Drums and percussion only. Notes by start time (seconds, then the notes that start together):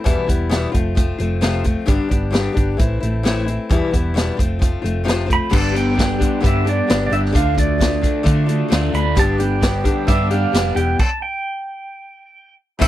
0.06 kick, closed hi-hat
0.29 kick, closed hi-hat
0.51 snare, closed hi-hat
0.74 kick, closed hi-hat
0.97 kick, closed hi-hat
1.20 closed hi-hat
1.42 snare, closed hi-hat
1.64 kick, closed hi-hat
1.88 kick, closed hi-hat
2.11 kick, closed hi-hat
2.34 snare, closed hi-hat
2.57 kick, closed hi-hat
2.79 kick, closed hi-hat
3.03 closed hi-hat
3.25 snare, closed hi-hat
3.48 closed hi-hat
3.70 kick, closed hi-hat
3.94 kick, closed hi-hat
4.17 snare, closed hi-hat
4.39 kick, closed hi-hat
4.62 kick, closed hi-hat
4.85 closed hi-hat
5.08 snare, closed hi-hat
5.30 kick, closed hi-hat
5.53 kick, crash
5.76 closed hi-hat
5.99 kick, snare, closed hi-hat
6.21 kick, closed hi-hat
6.44 kick, closed hi-hat
6.67 closed hi-hat
6.89 snare, closed hi-hat
7.12 closed hi-hat
7.25 snare
7.35 kick, closed hi-hat
7.58 kick, closed hi-hat
7.81 kick, snare, closed hi-hat
8.03 kick, closed hi-hat
8.26 kick, closed hi-hat
8.49 closed hi-hat
8.71 snare, closed hi-hat
8.94 closed hi-hat
9.17 kick, closed hi-hat
9.40 closed hi-hat
9.62 kick, snare, closed hi-hat
9.85 kick, closed hi-hat
10.08 kick, closed hi-hat
10.31 closed hi-hat
10.54 snare, closed hi-hat
10.77 closed hi-hat
10.99 kick, crash
12.82 kick, crash